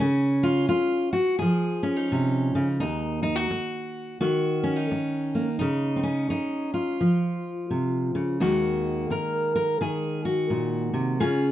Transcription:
0.00 C#3 C#4
0.43 F4
0.69 F4, muted steel-string acoustic guitar stroke
1.13 F#4
1.39 F3 G#4
1.83 C#4
1.96 D#4
2.12 C3
2.55 C#3
2.80 D#2 D#4
3.23 D#4
3.36 F#4
3.50 muted steel-string acoustic guitar stroke
4.21 D#3 F#4
4.63 C#4
4.76 D#4
4.91 muted steel-string acoustic guitar stroke
5.35 A#3
5.59 C#3 D#4
5.96 C4
6.03 C#4
6.30 D#4, muted steel-string acoustic guitar stroke
6.74 F4
7.01 F3
7.70 C3
8.15 C#3
8.40 D#2 D#3 G#3 A#3 F#4
9.10 A#4, muted steel-string acoustic guitar stroke
9.55 A#4
9.81 D#3 G#4
10.25 F#4
10.50 A#2
10.93 C3
11.20 C#3 C#4 F4 G#4

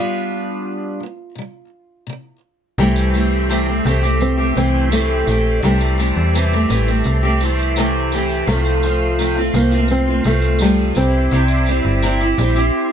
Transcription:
Already playing: G3 B3 D4 F4
1.00 G3 B3
1.35 C3 G3
2.07 C3 G3
2.78 C2 C3 E3 G3 A3 C4 G4 A4 E5 G5 C6
2.96 tambourine
3.13 E3 A3 C4 G4, tambourine
3.49 C3 E3 A3 C4 G4, tambourine
3.67 A3 C4 G4
3.84 C2 E3 A3 C4 G4, tambourine
4.03 A3 C4 G4, tambourine
4.20 C4, tambourine
4.38 A3 C4 G4
4.55 C2 E3 A3 C4 G4, tambourine
4.91 C3 E3 A3 C4 G4, tambourine
5.27 A#1 E3 A3 C4 G4, tambourine
5.62 C2 C3 E3 G3 A3 C4 G4 A5
5.81 tambourine
5.98 E3 A3 C4 G4, tambourine
6.17 E2
6.34 C3 E3 A3 C4 G4, tambourine
6.51 A3 C4 G4, tambourine
6.69 A1 E3 A3 C4 G4, tambourine
6.87 A3 C4 G4, tambourine
7.04 C2, tambourine
7.23 A3 C4 G4
7.40 E3 A3 C4 G4, tambourine
7.59 tambourine
7.76 C3 E3 A3 C4 G4, tambourine
8.12 E3 A3 C4 G4, tambourine
8.29 tambourine
8.47 C2 C3 F3 A3 C4 F4 C5 F5
8.65 tambourine
8.82 F3 A3 C4 F4, tambourine
9.18 C3 F3 A3 C4 F4, tambourine
9.36 A3 C4 F4
9.54 C2 F3 A3 A#3 C4 F4, tambourine
9.71 C4 F4, tambourine
9.75 A3
9.88 C4, tambourine
10.08 A3 C4 F4
10.24 C2 F3 A3 C4 F4, tambourine
10.42 tambourine
10.59 C3 F3 G3 A3 C4 F4, tambourine
10.95 C2 G3 C4 E4 G4 E5, tambourine
10.99 G4
11.31 C2 C3 G3 C4 E4 G4
11.48 tambourine
11.66 G3 C4 E4, tambourine
11.70 G4
11.85 G1
12.03 C3 G3 C4 E4 G4, tambourine
12.20 C4 E4 G4, tambourine
12.38 A#1 G3 C4 E4 G4, tambourine
12.55 C4 E4 G4, tambourine

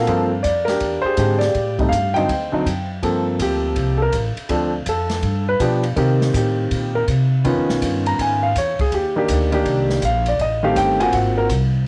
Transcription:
Already playing: A#4 F5
0.07 G2 F3 A#3 C4 A4, kick, ride
0.43 F2 D5, kick, hi-hat pedal, ride
0.65 D4 A#4, snare, ride
0.69 G4
0.80 E2, kick, ride
1.02 C5, muted upright bass stroke
1.06 G4 G#4
1.17 G#2 D3 G#3 C4 G4, kick, hi-hat pedal, ride
1.38 D5, snare, ride
1.43 G4
1.54 A2, kick, ride
1.79 C3 G3 A3 D#4, kick, ride
1.89 G2 F5, kick, hi-hat pedal, ride
2.14 D3 F#3 C4 D#4 C5 D#5 G5, ride
2.29 D2, kick, ride
2.52 D3 F#3 C4 D#4, muted upright bass stroke
2.66 F#2, kick, hi-hat pedal, ride
3.02 G2 F3 A#3 C4 A4, kick, ride
3.39 D2 G4, kick, hi-hat pedal, ride
3.76 C2, kick, ride
3.98 A4
4.02 A#4
4.12 A1, kick, hi-hat pedal, ride
4.37 muted upright bass stroke, ride
4.49 D2 F3 C4 D4 A4, kick, ride
4.86 F2 A4, kick, hi-hat pedal, ride
5.09 snare, ride
5.22 G2, kick, ride
5.49 B4
5.59 B2 F3 B3 D4 G4, kick, hi-hat pedal, ride
5.83 ride
5.96 C3 D#3 C4 G4 A#4, kick, ride
6.21 snare
6.34 A2 G4, kick, hi-hat pedal, ride
6.71 A#2, kick, ride
6.95 A#4
7.08 C3, kick, hi-hat pedal, ride
7.44 F2 D#3 B3 C#4 F4, kick, ride
7.56 C#2
7.68 B1, snare
7.81 G2, kick, hi-hat pedal, ride
8.06 A#5, ride
8.18 G#2 G#5, kick, ride
8.43 F5
8.55 E2 C#5, kick, hi-hat pedal, ride
8.79 G#4, muted upright bass stroke, kick, ride
8.92 D#2 G4, kick, ride
9.16 D#3 A#3 D4 G4
9.29 D2, kick, hi-hat pedal, ride
9.52 D#3 A#3 D4 G4, ride
9.66 C2, kick, ride
9.90 snare
10.02 A#1 F5, kick, hi-hat pedal, ride
10.26 D5, ride
10.39 A1 D#5, kick, ride
10.63 D#3 A3 C4 G4 F5
10.76 G1 G5, kick, hi-hat pedal, ride
11.00 A#3 C4 F4 F#4 G#5, ride
11.13 G#1 F#5, kick, ride
11.38 A#4
11.49 C2, kick, hi-hat pedal, ride

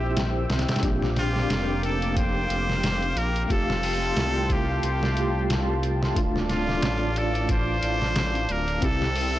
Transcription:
Already playing: A#1 C4 E4 G4 C5 E5 G5 E6
0.17 snare, closed hi-hat
0.50 C2, snare, closed hi-hat
0.59 snare, closed hi-hat
0.69 snare, closed hi-hat
0.76 snare, closed hi-hat
0.81 A#1 A#3 C4 D4 F5 D6, kick, closed hi-hat
0.85 G4
1.02 snare
1.16 F4, snare, closed hi-hat
1.33 C4 D4 G4, snare
1.50 F1, snare, closed hi-hat
1.83 A4, closed hi-hat
2.02 closed hi-hat
2.17 C5, kick, closed hi-hat
2.50 F1, closed hi-hat
2.70 snare
2.84 snare, closed hi-hat
3.02 closed hi-hat
3.16 A#1 A#4, closed hi-hat
3.36 closed hi-hat
3.45 A3 A#4
3.49 F1 F4 G4 A4 G5 A5 C6, kick, closed hi-hat
3.70 snare
3.83 open hi-hat
3.98 A3 F4
4.06 G4
4.16 C2, snare, closed hi-hat
4.50 G4, kick, closed hi-hat
4.83 C2 G4, closed hi-hat
5.03 snare
5.12 A3
5.16 F4 G4, closed hi-hat
5.49 C2, snare, closed hi-hat
5.83 closed hi-hat
6.03 snare
6.14 D1 A3 D4 F4 D5 F5 D6, kick, closed hi-hat
6.36 snare
6.49 F4, snare, closed hi-hat
6.66 A3 D4 F4, snare
6.82 A1, snare, closed hi-hat
7.16 A4, closed hi-hat
7.35 closed hi-hat
7.49 C5, kick, closed hi-hat
7.83 A1, closed hi-hat
8.02 snare
8.16 snare, closed hi-hat
8.35 closed hi-hat
8.49 D1 A#4, closed hi-hat
8.68 closed hi-hat
8.81 C2 C4 E4 G4 A4 C5 E5 G5 E6, kick, closed hi-hat
9.02 snare
9.16 open hi-hat
9.31 C4
9.35 E4

